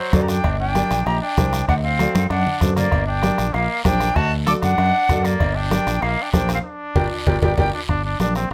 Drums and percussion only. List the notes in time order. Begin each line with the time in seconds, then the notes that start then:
0.13 bombo low, bombo rim, high conga, low conga, low timbale, short guiro
0.28 bombo rim, short guiro
0.44 bombo low, bombo rim, cowbell, high conga, long guiro
0.75 bombo rim, high conga, short guiro
0.91 bombo rim, short guiro
1.06 bombo rim, cowbell, high conga, long guiro
1.37 bombo low, bombo rim, high conga, short guiro
1.53 bombo rim, short guiro
1.68 bombo low, bombo rim, cowbell, high conga, long guiro
1.99 bombo rim, high conga, short guiro
2.15 bombo rim, high conga, short guiro
2.30 bombo rim, cowbell, high conga, long guiro
2.46 low conga
2.61 bombo low, bombo rim, low conga, low timbale, short guiro
2.76 bombo rim, low conga, short guiro
2.92 bombo low, bombo rim, cowbell, high conga, long guiro
3.23 bombo rim, high conga, short guiro
3.38 bombo rim, short guiro
3.54 bombo rim, cowbell, high conga, long guiro
3.85 bombo low, bombo rim, high conga, low timbale, short guiro
4.00 bombo rim, short guiro
4.16 bombo low, bombo rim, cowbell, high conga, long guiro
4.47 bombo rim, high conga, short guiro
4.62 bombo rim, low conga, short guiro
4.78 bombo rim, cowbell, high conga, long guiro
5.09 bombo low, bombo rim, high conga, low conga, low timbale, short guiro
5.25 bombo rim, short guiro
5.40 bombo low, bombo rim, cowbell, high conga, long guiro
5.71 bombo rim, high conga, short guiro
5.87 bombo rim, short guiro
6.02 bombo rim, cowbell, high conga, long guiro
6.33 bombo low, bombo rim, high conga, low timbale, short guiro
6.49 bombo rim, short guiro
6.95 bombo low, low conga, high timbale, long guiro
7.27 bombo low, low conga, high timbale, long guiro
7.42 bombo low, low conga, high timbale, long guiro
7.58 bombo low, low conga, high timbale, long guiro
7.88 bombo low, bombo rim, high conga, long guiro
8.20 bombo rim, high conga, short guiro
8.35 bombo rim, short guiro